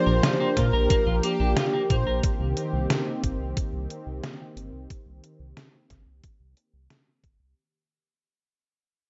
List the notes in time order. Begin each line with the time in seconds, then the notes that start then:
Already playing: F3 A#3 D4 G4 C5
0.06 A#1 A#4
0.23 F4, snare, closed hi-hat
0.40 A#3
0.57 A#2 F4 A#4, kick, snare, closed hi-hat
0.73 A#1 A#4
0.90 A#3, kick, closed hi-hat
1.06 A#1 F4
1.23 A#3 G4, closed hi-hat
1.40 A#1 D4
1.56 F4, snare, closed hi-hat
1.73 A#3
1.90 A#2 A#3 C5, kick, closed hi-hat
2.07 A#1 A#4
2.23 D#3 C4, kick, closed hi-hat
2.40 C2
2.57 closed hi-hat
2.73 C2
2.90 snare, closed hi-hat
3.23 G1, kick, closed hi-hat
3.40 C2
3.57 kick, closed hi-hat
3.73 C2
3.90 closed hi-hat
4.07 C2
4.24 snare, closed hi-hat
4.57 G1, closed hi-hat
4.73 C2
4.90 kick, closed hi-hat
5.06 C2
5.24 closed hi-hat
5.40 C2
5.57 snare, closed hi-hat
5.90 G1, kick, snare, closed hi-hat
6.07 C2
6.24 kick, closed hi-hat
6.40 C2
6.57 closed hi-hat
6.74 C2
6.90 snare, closed hi-hat
7.23 G1, kick, closed hi-hat
7.40 C2